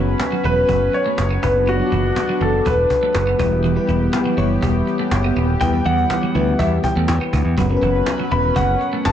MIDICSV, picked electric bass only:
0, 0, Header, 1, 3, 480
1, 0, Start_track
1, 0, Tempo, 491803
1, 1637, Time_signature, 4, 2, 24, 8
1, 8901, End_track
2, 0, Start_track
2, 0, Title_t, "Picked electric bass"
2, 0, Program_c, 0, 34
2, 0, Note_on_c, 0, 30, 90
2, 132, Note_off_c, 0, 30, 0
2, 432, Note_on_c, 0, 28, 83
2, 614, Note_off_c, 0, 28, 0
2, 672, Note_on_c, 0, 30, 86
2, 854, Note_off_c, 0, 30, 0
2, 1152, Note_on_c, 0, 30, 84
2, 1333, Note_off_c, 0, 30, 0
2, 1395, Note_on_c, 0, 30, 104
2, 1756, Note_off_c, 0, 30, 0
2, 1873, Note_on_c, 0, 30, 94
2, 2054, Note_off_c, 0, 30, 0
2, 2351, Note_on_c, 0, 30, 80
2, 2533, Note_off_c, 0, 30, 0
2, 2594, Note_on_c, 0, 28, 93
2, 2775, Note_off_c, 0, 28, 0
2, 3073, Note_on_c, 0, 30, 90
2, 3254, Note_off_c, 0, 30, 0
2, 3312, Note_on_c, 0, 28, 96
2, 3673, Note_off_c, 0, 28, 0
2, 3791, Note_on_c, 0, 28, 99
2, 3973, Note_off_c, 0, 28, 0
2, 4269, Note_on_c, 0, 30, 80
2, 4452, Note_off_c, 0, 30, 0
2, 4512, Note_on_c, 0, 28, 92
2, 4694, Note_off_c, 0, 28, 0
2, 4991, Note_on_c, 0, 30, 90
2, 5173, Note_off_c, 0, 30, 0
2, 5233, Note_on_c, 0, 27, 92
2, 5414, Note_off_c, 0, 27, 0
2, 5476, Note_on_c, 0, 40, 96
2, 5656, Note_off_c, 0, 40, 0
2, 5713, Note_on_c, 0, 40, 96
2, 5894, Note_off_c, 0, 40, 0
2, 6197, Note_on_c, 0, 38, 79
2, 6377, Note_off_c, 0, 38, 0
2, 6433, Note_on_c, 0, 40, 90
2, 6614, Note_off_c, 0, 40, 0
2, 6795, Note_on_c, 0, 40, 77
2, 6885, Note_off_c, 0, 40, 0
2, 6912, Note_on_c, 0, 40, 93
2, 7004, Note_off_c, 0, 40, 0
2, 7155, Note_on_c, 0, 38, 81
2, 7245, Note_off_c, 0, 38, 0
2, 7267, Note_on_c, 0, 40, 83
2, 7360, Note_off_c, 0, 40, 0
2, 7392, Note_on_c, 0, 30, 99
2, 7574, Note_off_c, 0, 30, 0
2, 7632, Note_on_c, 0, 30, 95
2, 7814, Note_off_c, 0, 30, 0
2, 8116, Note_on_c, 0, 28, 84
2, 8296, Note_off_c, 0, 28, 0
2, 8353, Note_on_c, 0, 30, 98
2, 8534, Note_off_c, 0, 30, 0
2, 8836, Note_on_c, 0, 30, 91
2, 8901, Note_off_c, 0, 30, 0
2, 8901, End_track
3, 0, Start_track
3, 0, Title_t, "Muted picked electric bass strokes"
3, 6670, Note_on_c, 9, 29, 41
3, 6768, Note_off_c, 9, 29, 0
3, 8901, End_track
0, 0, End_of_file